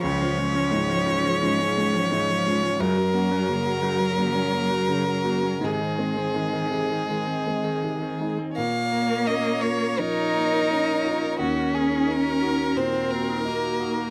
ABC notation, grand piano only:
X:1
M:4/4
L:1/8
Q:1/4=86
K:Bbm
V:1 name="Grand piano"
D,, D A,, F A,, D A,, F | G,, D D, G D, D D, G | A,, C E, E E, C E, E | B,, B, D F F, B, D F |
E,, B, E G B,, B, E G |]